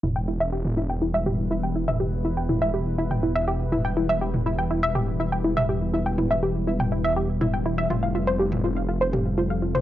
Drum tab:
T2 |o----o----o----o|----o----o----o-|---o----o----o--|--o----o----o---|

T2 |o----o----o----o|